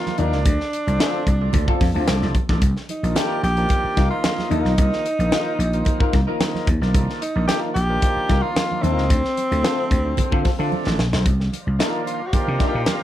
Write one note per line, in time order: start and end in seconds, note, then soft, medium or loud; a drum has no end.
0.00 0.20 D#3 medium
0.00 0.20 F3 medium
0.00 0.20 A#3 medium
0.00 0.20 D4 medium
0.00 0.20 F4 loud
0.06 snare soft
0.06 high conga medium
0.18 0.33 D#2 loud
0.18 2.35 D4 loud
0.18 0.37 D#4 medium
0.18 0.37 F4 medium
0.18 0.37 A#4 medium
0.18 closed hi-hat medium
0.18 high conga medium
0.32 0.43 C#2 medium
0.32 0.46 D#3 medium
0.32 0.45 F3 medium
0.32 0.46 A#3 medium
0.32 0.46 D4 medium
0.32 snare soft
0.45 0.57 D2 loud
0.45 kick loud
0.45 closed hi-hat loud
0.45 muted conga medium
0.61 snare soft
0.73 closed hi-hat medium
0.87 0.97 C2 medium
0.87 1.29 D3 medium
0.87 1.29 F3 medium
0.87 1.29 A3 medium
0.87 1.29 C4 medium
0.87 closed hi-hat medium
0.99 1.20 C4 medium
0.99 1.20 F4 medium
0.99 1.20 A4 medium
0.99 snare loud
0.99 closed hi-hat loud
0.99 high conga medium
1.27 1.48 C2 loud
1.27 kick medium
1.27 closed hi-hat medium
1.41 1.83 D3 medium
1.41 1.83 F3 medium
1.41 1.83 A3 medium
1.41 1.83 D4 medium
1.53 1.65 D2 medium
1.53 kick loud
1.53 closed hi-hat medium
1.53 muted conga medium
1.53 low conga medium
1.68 1.86 C4 medium
1.68 1.85 F4 medium
1.68 1.85 A4 medium
1.68 kick medium
1.81 1.92 F2 medium
1.81 kick loud
1.81 snare soft
1.81 open hi-hat medium
1.81 muted conga medium
1.94 2.05 D2 medium
1.94 2.37 D3 medium
1.94 2.37 F3 medium
1.94 2.37 A3 medium
1.94 2.09 C4 medium
1.94 2.37 D4 loud
1.94 2.08 F4 medium
1.94 2.08 A4 medium
2.08 2.19 C2 loud
2.08 snare loud
2.08 closed hi-hat medium
2.08 high conga medium
2.22 2.33 C2 medium
2.22 snare soft
2.22 high conga medium
2.35 kick medium
2.35 closed hi-hat medium
2.35 high conga medium
2.49 2.59 A1 medium
2.49 2.62 D3 medium
2.49 2.62 F3 medium
2.49 2.62 A3 medium
2.49 2.62 D4 medium
2.49 kick loud
2.49 snare soft
2.62 2.73 C2 loud
2.62 kick loud
2.62 closed hi-hat medium
2.62 muted conga medium
2.77 snare soft
2.89 3.17 D#4 medium
2.89 closed hi-hat medium
2.89 muted conga soft
3.03 3.13 A#1 medium
3.03 3.45 D#3 medium
3.03 3.45 F3 medium
3.03 3.45 A#3 medium
3.03 3.45 D4 medium
3.03 closed hi-hat medium
3.16 3.36 D#4 medium
3.16 3.37 F4 medium
3.16 3.43 G4 loud
3.16 3.37 A#4 loud
3.16 snare loud
3.16 closed hi-hat loud
3.16 high conga medium
3.43 3.65 A#1 loud
3.43 4.08 G4 loud
3.43 closed hi-hat medium
3.57 3.99 D#3 medium
3.57 3.99 F3 medium
3.57 3.99 A#3 medium
3.57 3.99 D4 medium
3.57 closed hi-hat soft
3.69 kick medium
3.69 closed hi-hat medium
3.69 muted conga medium
3.85 muted slap bass stroke soft
3.97 4.09 C2 medium
3.97 4.15 D#4 medium
3.97 4.15 F4 medium
3.97 4.16 A#4 medium
3.97 kick medium
3.97 snare soft
3.97 closed hi-hat medium
3.97 muted conga medium
4.10 4.53 D#3 medium
4.10 4.53 F3 medium
4.10 4.53 A#3 medium
4.10 4.53 D#4 medium
4.10 4.48 F4 loud
4.24 snare loud
4.24 closed hi-hat medium
4.24 high conga medium
4.38 snare soft
4.38 high conga medium
4.50 4.62 D#2 medium
4.50 4.71 D#4 medium
4.50 6.63 D#4 loud
4.50 4.71 F4 medium
4.50 4.72 A#4 medium
4.50 closed hi-hat medium
4.50 high conga medium
4.65 4.75 B1 loud
4.65 5.07 D#3 medium
4.65 5.07 F3 medium
4.65 5.07 A#3 medium
4.65 4.72 C4 medium
4.65 snare soft
4.72 5.11 D#4 medium
4.78 4.90 C2 loud
4.78 kick loud
4.78 closed hi-hat loud
4.78 muted conga medium
4.93 snare soft
5.06 closed hi-hat medium
5.19 5.29 A#1 medium
5.19 5.61 D#3 medium
5.19 5.61 F3 medium
5.19 5.61 A#3 medium
5.19 5.26 C4 medium
5.19 closed hi-hat soft
5.27 5.65 D#4 loud
5.31 5.50 D#4 medium
5.31 5.51 F4 medium
5.31 5.51 A#4 medium
5.31 snare loud
5.31 closed hi-hat medium
5.31 high conga medium
5.59 5.81 A#1 loud
5.59 closed hi-hat medium
5.73 6.15 D#3 medium
5.73 6.15 F3 medium
5.73 6.15 A#3 medium
5.73 6.15 C4 medium
5.73 closed hi-hat soft
5.85 kick loud
5.85 closed hi-hat medium
5.85 muted conga medium
6.00 6.18 D#4 medium
6.00 6.18 F4 medium
6.00 6.17 A#4 medium
6.00 muted slap bass stroke soft
6.00 kick medium
6.13 6.25 C2 medium
6.13 kick medium
6.13 snare soft
6.13 closed hi-hat soft
6.13 muted conga medium
6.27 6.69 D#3 medium
6.27 6.69 F3 medium
6.27 6.69 A#3 medium
6.27 6.69 D#4 loud
6.27 6.41 D#4 medium
6.27 6.41 F4 medium
6.27 6.40 A#4 medium
6.40 snare loud
6.40 closed hi-hat medium
6.40 high conga medium
6.55 snare soft
6.55 high conga medium
6.66 6.79 D#2 loud
6.66 kick loud
6.66 closed hi-hat medium
6.66 high conga medium
6.81 6.94 B1 loud
6.81 7.23 D#3 medium
6.81 7.23 F3 medium
6.81 7.23 A#3 medium
6.81 7.23 D4 loud
6.81 snare soft
6.94 7.06 C2 loud
6.94 kick loud
6.94 closed hi-hat medium
6.94 muted conga medium
7.10 snare soft
7.21 7.46 D#4 medium
7.21 closed hi-hat medium
7.35 7.46 A#1 medium
7.35 7.77 D#3 medium
7.35 7.77 F3 medium
7.35 7.77 A#3 medium
7.35 7.77 D4 medium
7.48 7.69 D#4 medium
7.48 7.69 F4 medium
7.48 7.60 G4 loud
7.48 7.69 A#4 medium
7.48 snare loud
7.48 closed hi-hat loud
7.48 high conga medium
7.74 7.97 A#1 medium
7.74 8.44 G4 loud
7.74 closed hi-hat medium
7.89 8.31 D#3 medium
7.89 8.31 F3 medium
7.89 8.31 A#3 medium
7.89 8.31 D4 loud
8.02 kick medium
8.02 closed hi-hat medium
8.02 muted conga medium
8.17 muted slap bass stroke soft
8.29 8.41 C2 medium
8.29 8.47 D#4 medium
8.29 8.48 F4 medium
8.29 8.48 A#4 medium
8.29 kick loud
8.29 snare soft
8.29 closed hi-hat soft
8.29 muted conga medium
8.42 8.85 D#3 medium
8.42 8.85 F3 medium
8.42 8.85 A#3 medium
8.42 8.85 D4 medium
8.42 8.84 F4 loud
8.56 snare loud
8.56 closed hi-hat medium
8.56 high conga medium
8.72 high conga medium
8.82 8.97 D#2 medium
8.82 10.98 C4 loud
8.82 9.03 D#4 medium
8.82 9.04 F4 loud
8.82 9.04 A#4 medium
8.82 closed hi-hat medium
8.82 high conga medium
8.97 9.07 C#2 medium
8.97 9.10 D#3 medium
8.97 9.10 F3 medium
8.97 9.10 A#3 medium
8.97 9.10 D#4 medium
8.97 snare soft
9.10 9.22 D2 loud
9.10 kick loud
9.10 closed hi-hat loud
9.10 muted conga medium
9.25 snare soft
9.37 closed hi-hat medium
9.37 muted conga soft
9.51 9.62 D2 medium
9.51 9.93 D3 medium
9.51 9.93 F3 medium
9.51 9.93 A3 medium
9.51 9.93 C4 loud
9.51 closed hi-hat medium
9.63 9.82 C4 medium
9.63 9.82 F4 medium
9.63 9.83 A4 loud
9.63 snare loud
9.63 closed hi-hat medium
9.63 high conga medium
9.91 10.12 D2 loud
9.91 kick medium
9.91 closed hi-hat medium
10.05 10.46 D3 medium
10.05 10.47 F3 medium
10.05 10.47 A3 medium
10.05 10.47 C4 medium
10.17 kick medium
10.17 closed hi-hat medium
10.17 muted conga medium
10.17 low conga medium
10.32 10.42 D3 medium
10.32 10.50 C4 medium
10.32 10.49 F4 medium
10.32 10.49 A4 medium
10.32 kick medium
10.45 kick medium
10.45 snare soft
10.45 open hi-hat soft
10.45 muted conga medium
10.59 11.00 D3 medium
10.59 10.69 D3 medium
10.59 11.00 F3 medium
10.59 11.00 A3 medium
10.59 10.73 C4 medium
10.59 11.01 D4 loud
10.59 10.72 F4 medium
10.59 10.72 A4 medium
10.72 high conga medium
10.87 10.96 A1 medium
10.87 snare medium
10.87 high conga medium
10.98 11.10 A#1 medium
10.98 snare medium
10.98 high conga medium
11.13 11.23 B1 medium
11.13 11.25 D3 medium
11.13 11.26 F3 medium
11.13 11.26 A3 medium
11.13 11.26 C4 medium
11.13 snare medium
11.25 11.47 C2 loud
11.25 13.03 C5 medium
11.25 13.03 D5 medium
11.25 13.03 F5 medium
11.25 13.03 A#5 medium
11.25 kick loud
11.25 closed hi-hat loud
11.25 muted conga medium
11.40 snare soft
11.53 closed hi-hat medium
11.53 muted conga soft
11.67 11.77 C2 medium
11.79 12.22 D#3 medium
11.79 12.22 F3 medium
11.79 12.22 A#3 medium
11.79 12.22 D4 medium
11.79 12.00 D#4 medium
11.79 12.00 F4 medium
11.79 12.00 A#4 loud
11.79 snare loud
11.79 closed hi-hat medium
11.79 high conga medium
12.06 12.28 F4 medium
12.06 closed hi-hat medium
12.27 12.35 F#4 medium
12.33 12.76 D#3 medium
12.33 12.76 F3 medium
12.33 12.76 A#3 medium
12.33 12.76 D4 medium
12.33 12.68 G4 medium
12.33 muted slap bass stroke medium
12.33 kick medium
12.33 closed hi-hat medium
12.33 muted conga medium
12.48 12.58 C3 loud
12.59 12.80 D#4 medium
12.59 12.81 F4 medium
12.59 12.81 A#4 medium
12.59 kick medium
12.59 snare soft
12.59 closed hi-hat soft
12.59 muted conga medium
12.68 13.02 G4 medium
12.75 12.85 A#2 medium
12.86 13.03 D#3 medium
12.86 13.03 F3 medium
12.86 13.03 A#3 medium
12.86 13.03 F4 medium
12.86 snare loud
12.86 closed hi-hat medium
12.86 high conga medium